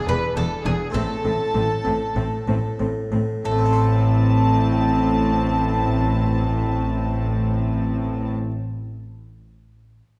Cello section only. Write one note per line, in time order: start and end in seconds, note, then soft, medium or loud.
0.09 0.17 E2 medium
0.37 0.45 E2 medium
0.65 0.73 E2 medium
0.95 1.03 A2 medium
1.25 1.33 A2 medium
1.55 1.63 A2 medium
1.85 1.93 A2 medium
2.16 2.24 A2 medium
2.48 2.56 A2 medium
2.80 2.88 A2 medium
3.12 3.20 A2 medium
3.45 8.31 A2 medium